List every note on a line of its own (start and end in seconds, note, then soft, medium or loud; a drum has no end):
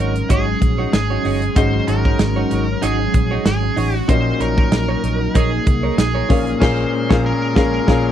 0.00 0.21 G#1 loud
0.00 1.57 G#2 medium
0.00 6.26 F#3 medium
0.00 4.05 G#3 medium
0.00 1.52 C#4 medium
0.00 4.05 C#4 medium
0.00 0.13 D#4 medium
0.00 0.14 F#4 medium
0.00 1.52 F#4 medium
0.00 1.53 G#4 medium
0.00 0.33 A#4 medium
0.00 0.14 C#5 medium
0.00 1.53 D#5 medium
0.16 closed hi-hat medium
0.29 0.53 G#1 medium
0.29 0.49 D#4 medium
0.29 0.47 F#4 medium
0.29 0.92 G#4 medium
0.29 0.46 C#5 loud
0.29 kick medium
0.29 closed hi-hat medium
0.47 muted clean electric guitar stroke soft
0.61 0.84 A#1 medium
0.61 muted clean electric guitar stroke soft
0.61 kick medium
0.61 closed hi-hat medium
0.78 0.92 D#4 soft
0.78 0.92 F#4 medium
0.78 0.91 C#5 medium
0.93 1.16 G#1 loud
0.93 1.58 G#4 medium
0.93 snare loud
0.93 closed hi-hat medium
1.10 1.23 D#4 soft
1.10 1.23 F#4 medium
1.10 1.23 C#5 medium
1.24 1.48 G1 medium
1.24 1.44 D#4 medium
1.24 1.42 F#4 medium
1.24 1.41 C#5 medium
1.24 open hi-hat medium
1.42 muted clean electric guitar stroke medium
1.42 closed hi-hat soft
1.55 1.79 G#1 loud
1.55 2.47 G#2 medium
1.55 4.05 C#4 medium
1.55 1.75 D#4 medium
1.55 4.05 F#4 medium
1.55 1.76 F#4 medium
1.55 4.05 G#4 medium
1.55 1.88 C5 loud
1.55 1.76 C#5 medium
1.55 4.06 D#5 medium
1.55 kick loud
1.55 closed hi-hat medium
1.88 2.11 G#1 medium
1.88 2.03 D#4 medium
1.88 2.03 F#4 medium
1.88 2.86 A#4 medium
1.88 2.03 C#5 medium
1.88 closed hi-hat medium
2.05 2.18 D#4 soft
2.05 2.18 F#4 medium
2.05 2.17 C#5 medium
2.05 kick medium
2.19 2.43 G#1 medium
2.19 muted clean electric guitar stroke soft
2.19 snare loud
2.19 closed hi-hat medium
2.36 2.49 D#4 medium
2.36 2.50 F#4 medium
2.36 2.51 C#5 medium
2.51 2.74 G#1 medium
2.51 2.66 D#4 medium
2.51 2.66 F#4 medium
2.51 2.67 C#5 medium
2.51 closed hi-hat medium
2.68 muted clean electric guitar stroke soft
2.82 3.06 G#1 medium
2.82 3.01 D#4 loud
2.82 3.00 F#4 medium
2.82 3.45 G#4 medium
2.82 2.98 C#5 medium
2.82 closed hi-hat medium
2.99 muted clean electric guitar stroke soft
3.14 3.37 A#1 medium
3.14 muted clean electric guitar stroke soft
3.14 kick medium
3.14 closed hi-hat medium
3.31 3.45 D#4 medium
3.31 3.44 F#4 medium
3.31 3.44 C#5 medium
3.46 3.68 G#1 loud
3.46 3.96 G#4 medium
3.46 snare loud
3.46 closed hi-hat medium
3.63 muted clean electric guitar stroke soft
3.76 4.00 A1 medium
3.76 3.96 D#4 medium
3.76 3.94 F#4 medium
3.76 3.93 C#5 medium
3.76 open hi-hat medium
3.94 4.11 F#4 medium
3.94 muted clean electric guitar stroke soft
4.08 4.32 A#1 loud
4.08 5.00 A#2 medium
4.08 8.12 A#3 medium
4.08 6.26 C#4 medium
4.08 4.28 D#4 medium
4.08 6.28 D#4 medium
4.08 6.26 F#4 medium
4.08 4.28 A#4 medium
4.08 6.26 A#4 medium
4.08 4.41 C5 loud
4.08 4.28 C#5 medium
4.08 6.27 D#5 medium
4.08 kick loud
4.08 closed hi-hat medium
4.40 4.63 A#1 medium
4.40 4.55 D#4 medium
4.40 4.56 A#4 medium
4.40 5.39 A#4 medium
4.40 4.56 C#5 medium
4.40 closed hi-hat medium
4.57 4.71 D#4 medium
4.57 4.71 A#4 medium
4.57 4.70 C#5 medium
4.57 kick medium
4.72 4.95 A#1 medium
4.72 muted clean electric guitar stroke soft
4.72 snare loud
4.72 closed hi-hat medium
4.89 5.02 D#4 medium
4.89 5.03 A#4 medium
4.89 5.03 C#5 medium
5.03 5.26 A#1 medium
5.03 5.18 D#4 medium
5.03 5.19 A#4 medium
5.03 5.19 C#5 medium
5.03 closed hi-hat medium
5.21 muted clean electric guitar stroke soft
5.35 5.58 A#1 loud
5.35 5.54 D#4 medium
5.35 5.98 G#4 medium
5.35 5.52 A#4 medium
5.35 5.51 C#5 loud
5.35 kick medium
5.35 closed hi-hat medium
5.52 muted clean electric guitar stroke soft
5.66 5.90 C2 medium
5.66 muted clean electric guitar stroke soft
5.66 kick medium
5.66 closed hi-hat medium
5.83 5.96 D#4 medium
5.83 5.97 A#4 medium
5.83 5.96 C#5 medium
5.97 6.21 A#1 loud
5.97 6.64 G#4 medium
5.97 muted clean electric guitar stroke soft
5.97 snare loud
5.97 closed hi-hat medium
6.15 6.28 D#4 medium
6.15 6.28 A#4 medium
6.15 6.28 C#5 medium
6.29 6.53 A#1 medium
6.29 6.59 A#2 medium
6.29 8.12 G#3 medium
6.29 6.59 C#4 medium
6.29 8.12 C#4 medium
6.29 6.48 F4 medium
6.29 6.46 G#4 medium
6.29 6.60 G#4 medium
6.29 6.61 A#4 medium
6.29 6.45 C#5 medium
6.29 6.61 F5 medium
6.29 kick loud
6.29 open hi-hat medium
6.46 muted clean electric guitar stroke medium
6.46 closed hi-hat soft
6.60 6.84 A#1 loud
6.60 6.84 A#2 loud
6.60 6.83 C#4 loud
6.60 6.83 F4 medium
6.60 6.83 G#4 medium
6.60 6.84 G#4 loud
6.60 6.84 A#4 loud
6.60 7.25 C5 medium
6.60 6.84 C#5 medium
6.60 6.84 F5 loud
6.60 kick loud
6.60 snare loud
6.60 crash medium
7.09 7.31 A#1 loud
7.09 7.32 A#2 loud
7.09 7.31 C#4 loud
7.09 7.32 F4 loud
7.09 7.31 G#4 loud
7.09 7.32 A#4 loud
7.09 7.31 C#5 loud
7.09 7.32 F5 loud
7.09 kick loud
7.09 snare loud
7.26 7.55 A#4 medium
7.55 7.78 A#1 loud
7.55 7.79 A#2 loud
7.55 7.78 C#4 medium
7.55 7.78 F4 medium
7.55 7.78 G#4 medium
7.55 7.78 G#4 loud
7.55 7.79 A#4 loud
7.55 8.12 A#4 medium
7.55 7.79 C#5 loud
7.55 7.79 F5 loud
7.55 kick loud
7.55 snare loud
7.87 8.10 A#1 loud
7.87 8.10 A#2 loud
7.87 8.09 C#4 loud
7.87 8.09 F4 loud
7.87 8.10 G#4 loud
7.87 8.10 A#4 loud
7.87 8.10 C#5 loud
7.87 8.11 F5 loud
7.87 kick loud
7.87 snare loud